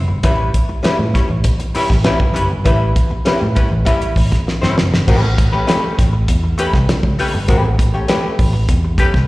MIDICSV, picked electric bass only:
0, 0, Header, 1, 3, 480
1, 0, Start_track
1, 0, Tempo, 603622
1, 188, Time_signature, 4, 2, 24, 8
1, 7375, End_track
2, 0, Start_track
2, 0, Title_t, "Picked electric bass"
2, 0, Program_c, 0, 34
2, 64, Note_on_c, 0, 31, 80
2, 189, Note_off_c, 0, 31, 0
2, 189, Note_on_c, 0, 33, 98
2, 404, Note_off_c, 0, 33, 0
2, 789, Note_on_c, 0, 45, 97
2, 897, Note_off_c, 0, 45, 0
2, 1030, Note_on_c, 0, 33, 90
2, 1137, Note_off_c, 0, 33, 0
2, 1513, Note_on_c, 0, 33, 69
2, 1619, Note_off_c, 0, 33, 0
2, 1750, Note_on_c, 0, 31, 80
2, 1876, Note_off_c, 0, 31, 0
2, 1876, Note_on_c, 0, 30, 86
2, 1981, Note_off_c, 0, 30, 0
2, 2000, Note_on_c, 0, 31, 84
2, 2103, Note_off_c, 0, 31, 0
2, 2113, Note_on_c, 0, 33, 99
2, 2327, Note_off_c, 0, 33, 0
2, 2720, Note_on_c, 0, 45, 97
2, 2824, Note_off_c, 0, 45, 0
2, 2955, Note_on_c, 0, 33, 94
2, 3061, Note_off_c, 0, 33, 0
2, 3310, Note_on_c, 0, 33, 91
2, 3418, Note_off_c, 0, 33, 0
2, 3681, Note_on_c, 0, 31, 81
2, 3784, Note_off_c, 0, 31, 0
2, 3802, Note_on_c, 0, 30, 85
2, 3905, Note_off_c, 0, 30, 0
2, 3920, Note_on_c, 0, 31, 87
2, 4023, Note_off_c, 0, 31, 0
2, 4041, Note_on_c, 0, 33, 109
2, 4358, Note_off_c, 0, 33, 0
2, 4764, Note_on_c, 0, 33, 94
2, 4972, Note_off_c, 0, 33, 0
2, 4995, Note_on_c, 0, 40, 90
2, 5207, Note_off_c, 0, 40, 0
2, 5356, Note_on_c, 0, 36, 84
2, 5460, Note_off_c, 0, 36, 0
2, 5593, Note_on_c, 0, 37, 80
2, 5698, Note_off_c, 0, 37, 0
2, 5841, Note_on_c, 0, 31, 82
2, 5943, Note_off_c, 0, 31, 0
2, 5956, Note_on_c, 0, 33, 105
2, 6274, Note_off_c, 0, 33, 0
2, 6675, Note_on_c, 0, 33, 97
2, 6886, Note_off_c, 0, 33, 0
2, 6911, Note_on_c, 0, 40, 106
2, 7124, Note_off_c, 0, 40, 0
2, 7270, Note_on_c, 0, 36, 77
2, 7375, Note_off_c, 0, 36, 0
2, 7375, End_track
3, 0, Start_track
3, 0, Title_t, "Muted picked electric bass strokes"
3, 552, Note_on_c, 9, 29, 50
3, 631, Note_off_c, 9, 29, 0
3, 670, Note_on_c, 9, 29, 48
3, 749, Note_off_c, 9, 29, 0
3, 1397, Note_on_c, 9, 29, 50
3, 1476, Note_off_c, 9, 29, 0
3, 2480, Note_on_c, 9, 29, 47
3, 2560, Note_off_c, 9, 29, 0
3, 2598, Note_on_c, 9, 29, 44
3, 2678, Note_off_c, 9, 29, 0
3, 3200, Note_on_c, 9, 29, 44
3, 3280, Note_off_c, 9, 29, 0
3, 5479, Note_on_c, 9, 29, 48
3, 5559, Note_off_c, 9, 29, 0
3, 7375, End_track
0, 0, End_of_file